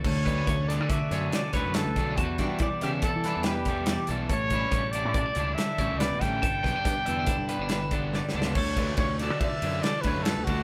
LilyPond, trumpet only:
\new Staff \with { instrumentName = "Trumpet" } { \time 5/4 \key d \major \tempo 4 = 141 cis''4. d''8 e''4 d''8 b'8 a'4 | fis'4 r8 g'8 a'4 g'4. r8 | cis''4. d''4. e''4 d''8 g''8~ | g''1 r4 |
cis''4 cis''8 d''8 e''4 d''8 b'8 a'8 fis'8 | }